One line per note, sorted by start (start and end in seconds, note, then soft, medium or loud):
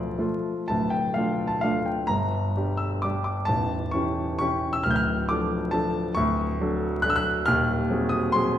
0.00 0.20 D1 medium
0.00 0.20 D2 medium
0.00 0.14 F3 medium
0.00 0.14 A3 medium
0.00 0.14 F4 medium
0.00 0.17 D5 loud
0.18 0.65 F3 soft
0.18 0.65 A3 medium
0.18 0.66 F4 medium
0.68 2.05 D1 medium
0.68 2.05 D2 medium
0.68 0.92 A5 medium
0.90 1.15 G5 medium
1.14 1.60 A3 soft
1.14 1.60 D4 soft
1.14 1.61 F4 medium
1.14 1.47 F5 medium
1.47 1.64 A5 medium
1.61 2.05 A3 medium
1.61 2.05 D4 medium
1.61 2.05 F4 medium
1.61 1.85 F5 medium
1.86 2.08 G5 medium
2.07 3.44 G1 medium
2.07 3.44 G2 medium
2.07 2.79 A#5 loud
2.57 3.00 G3 soft
2.57 3.00 D4 soft
2.57 3.00 G4 medium
2.77 3.02 E6 medium
3.02 3.44 G3 medium
3.02 3.44 D4 medium
3.02 3.44 G4 medium
3.02 3.23 D6 medium
3.24 3.47 D6 medium
3.45 4.80 A0 medium
3.45 4.80 A1 medium
3.45 3.92 A5 loud
3.91 4.36 E3 medium
3.91 4.36 C#4 soft
3.91 4.37 G4 medium
3.91 4.37 C#6 medium
4.39 4.81 E3 medium
4.39 4.81 C#4 medium
4.39 4.81 G4 medium
4.39 4.73 C#6 loud
4.73 4.84 E6 medium
4.83 6.12 D1 medium
4.83 6.12 D2 medium
4.83 4.90 F6 loud
4.91 4.96 G6 medium
4.96 5.28 F6 loud
5.29 5.70 F3 soft
5.29 5.70 D4 medium
5.29 5.70 A4 medium
5.29 5.73 D6 loud
5.71 6.11 F3 medium
5.71 6.12 D4 medium
5.71 6.12 A4 medium
5.71 6.14 A5 loud
6.15 7.43 D1 medium
6.15 7.43 D2 medium
6.15 7.04 C#6 loud
6.61 7.01 F#3 medium
6.61 7.01 D4 medium
6.61 7.01 A4 medium
7.02 7.43 F#3 medium
7.02 7.43 D4 medium
7.02 7.43 A4 medium
7.02 7.09 F#6 loud
7.10 7.16 E6 loud
7.16 7.46 F#6 loud
7.46 8.58 D#1 medium
7.46 8.58 D#2 medium
7.46 8.11 F6 loud
7.90 8.30 F#3 medium
7.90 8.30 C4 medium
7.90 8.31 G#4 medium
8.09 8.33 D#6 loud
8.32 8.58 F#3 medium
8.32 8.58 C4 medium
8.32 8.58 G#4 medium
8.32 8.58 C6 loud